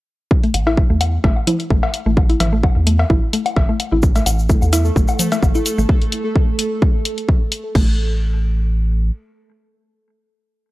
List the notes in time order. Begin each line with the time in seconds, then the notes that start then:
0.31 kick
0.43 A3, open hi-hat
0.54 A1, open hi-hat, low woodblock
0.67 E4, cowbell
0.77 kick
0.90 E2 A3
1.01 open hi-hat, low woodblock
1.24 A1 A3, kick, cowbell
1.37 low woodblock
1.47 E4, open hi-hat, low conga
1.60 open hi-hat
1.70 A1 A3, kick
1.83 cowbell, low woodblock
1.94 open hi-hat
2.06 A1 A3
2.17 kick, low woodblock
2.29 E4, open hi-hat
2.40 A1, open hi-hat, cowbell, low conga
2.53 A3
2.63 kick, low woodblock
2.76 E2
2.87 A3, open hi-hat
2.99 cowbell, low woodblock
3.10 A1 E4, kick
3.33 A3, open hi-hat
3.46 open hi-hat, low woodblock
3.56 A1, kick, cowbell
3.69 A3
3.80 open hi-hat, low woodblock
3.92 A1 E4
4.03 A3 A4, kick, shaker
4.16 A3, open hi-hat, cowbell, shaker
4.26 A1, open hi-hat, low woodblock, shaker
4.39 shaker
4.49 A3, kick, shaker
4.62 E2, low woodblock, shaker
4.73 E4, open hi-hat, cowbell, shaker
4.85 shaker
4.96 A1 A3, kick, shaker
5.08 low woodblock, shaker
5.19 open hi-hat, low conga, shaker
5.32 A3, open hi-hat, cowbell, shaker
5.42 A1, kick, low woodblock, shaker
5.55 E4, shaker
5.66 open hi-hat, shaker
5.78 A1 A3, shaker
5.89 kick
6.02 open hi-hat
6.12 open hi-hat
6.36 kick
6.59 open hi-hat
6.82 kick
7.05 open hi-hat
7.18 open hi-hat
7.29 kick
7.52 open hi-hat
7.75 A1 A3, kick, crash